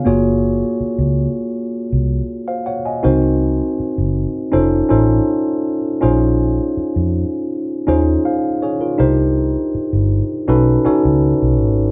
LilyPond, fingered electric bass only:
\new Staff \with { instrumentName = "Fingered electric bass" } { \clef bass \time 4/4 \key bes \minor \tempo 4 = 81 ges,,4 r16 des,8 r8. c,8 r4 | c,4 r16 ges,,8 r16 f,,8 a,,8 r4 | bes,,4 r16 f,8 r8. ees,8 r4 | c,4 r16 g,,8 r16 b,,8 r16 cis,8 b,,16 aes,,8 | }